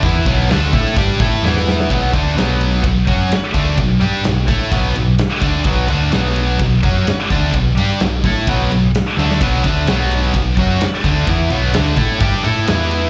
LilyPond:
<<
  \new Staff \with { instrumentName = "Distorted electric guitar" } { \time 4/4 \key b \minor \tempo 4 = 128 <e b e'>8 <b, fis b>8 <d a d'>8 <a e' a'>8 <g d' g'>8 <a e' a'>8 <e b e'>4 | <b, fis b>8 <d a d'>8 <b, fis b>4 <b, fis>8 <fis cis' fis'>8 r8 <d a d'>8 | <b, fis>8 <g d' g'>8 <b, fis>8 <a e' a'>8 <b, fis b>8 <b, fis>8 r8 <d a d'>8 | <b, fis b>8 <d a d'>8 <b, fis b>4 <b, fis>8 <fis cis' fis'>8 r8 <d a d'>8 |
<b, fis>8 <g d' g'>8 <b, fis>8 <a e' a'>8 <b, fis b>8 <b, fis>8 r8 <d a d'>8 | <b, fis b>8 <d a d'>8 <b, fis b>4 <b, fis>8 <fis cis' fis'>8 r8 <d a d'>8 | <e b e'>8 <b, fis b>8 <d a d'>8 <a e' a'>8 <g d' g'>8 <a e' a'>8 <e b e'>4 | }
  \new Staff \with { instrumentName = "Distorted electric guitar" } { \time 4/4 \key b \minor <e b e'>8 <b, fis b>8 <d a d'>8 <a e' a'>8 <g d' g'>8 <a e' a'>8 <e b e'>4 | <b, fis b>8 <d a d'>8 <b, fis b>4 <b, fis>8 <fis cis' fis'>8 r8 <d a d'>8 | <b, fis>8 <g d' g'>8 <b, fis>8 <a e' a'>8 <b, fis b>8 <b, fis>8 r8 <d a d'>8 | <b, fis b>8 <d a d'>8 <b, fis b>4 <b, fis>8 <fis cis' fis'>8 r8 <d a d'>8 |
<b, fis>8 <g d' g'>8 <b, fis>8 <a e' a'>8 <b, fis b>8 <b, fis>8 r8 <d a d'>8 | <b, fis b>8 <d a d'>8 <b, fis b>4 <b, fis>8 <fis cis' fis'>8 r8 <d a d'>8 | <e b e'>8 <b, fis b>8 <d a d'>8 <a e' a'>8 <g d' g'>8 <a e' a'>8 <e b e'>4 | }
  \new Staff \with { instrumentName = "Overdriven electric guitar" } { \time 4/4 \key b \minor <e b e'>8 <b, fis b>8 <d a d'>8 <a e' a'>8 <g d' g'>8 <a e' a'>8 <e b e'>4 | <b, fis b>8 <d a d'>8 <b, fis b>4 <b, fis>8 <fis cis' fis'>8 r8 <d a d'>8 | <b, fis>8 <g d' g'>8 <b, fis>8 <a e' a'>8 <b, fis b>8 <b, fis>8 r8 <d a d'>8 | <b, fis b>8 <d a d'>8 <b, fis b>4 <b, fis>8 <fis cis' fis'>8 r8 <d a d'>8 |
<b, fis>8 <g d' g'>8 <b, fis>8 <a e' a'>8 <b, fis b>8 <b, fis>8 r8 <d a d'>8 | <b, fis b>8 <d a d'>8 <b, fis b>4 <b, fis>8 <fis cis' fis'>8 r8 <d a d'>8 | <e b e'>8 <b, fis b>8 <d a d'>8 <a e' a'>8 <g d' g'>8 <a e' a'>8 <e b e'>4 | }
  \new Staff \with { instrumentName = "Fingered electric bass" } { \clef bass \time 4/4 \key b \minor e,8 b,,8 d,8 a,8 g,8 a,8 e,4 | b,,8 d,8 b,,4 b,,8 fis,8 r8 d,8 | b,,8 g,8 b,,8 a,8 b,,8 b,,8 r8 d,8 | b,,8 d,8 b,,4 b,,8 fis,8 r8 d,8 |
b,,8 g,8 b,,8 a,8 b,,8 b,,8 r8 d,8 | b,,8 d,8 b,,4 b,,8 fis,8 r8 d,8 | e,8 b,,8 d,8 a,8 g,8 a,8 e,4 | }
  \new DrumStaff \with { instrumentName = "Drums" } \drummode { \time 4/4 <hho bd>8 bd8 <hho sn>8 bd8 <hho bd>8 bd8 sn16 sn16 sn16 sn16 | <bd cymr>8 <bd cymr>8 <cymr sn>8 cymr8 <bd cymr>8 <bd cymr>8 <cymr sn>8 <bd cymr>8 | <bd cymr>8 cymr8 <cymr sn>8 <bd cymr>8 <bd cymr>8 cymr8 <cymr sn>8 <bd cymr>8 | <bd cymr>8 cymr8 <cymr sn>8 cymr8 <bd cymr>8 <bd cymr>8 <cymr sn>8 <bd cymr>8 |
<bd cymr>8 cymr8 <cymr sn>8 <bd cymr>8 <bd cymr>8 cymr8 <cymr sn>8 sn16 sn16 | <cymc bd cymr>8 <bd cymr>8 <cymr sn>8 cymr8 <bd cymr>8 <bd cymr>8 <cymr sn>8 <bd cymr>8 | <bd cymr>8 cymr8 <cymr sn>8 <bd cymr>8 <bd cymr>8 cymr8 <cymr sn>8 cymr8 | }
>>